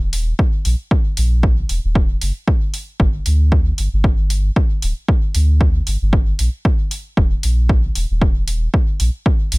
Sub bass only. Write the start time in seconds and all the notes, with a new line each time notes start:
Already playing: D#1
0.65 A#1
1.17 A#1
1.69 D#1
1.84 D#1
2.21 F#1
3.00 G1
3.26 D2
3.78 G1
3.93 G1
4.82 D1
5.35 D2
5.87 G1
6.01 G1
6.39 A#1
7.17 D#1
7.43 A#1
7.95 D#1
8.10 D#1
9.00 A#1
9.52 A#1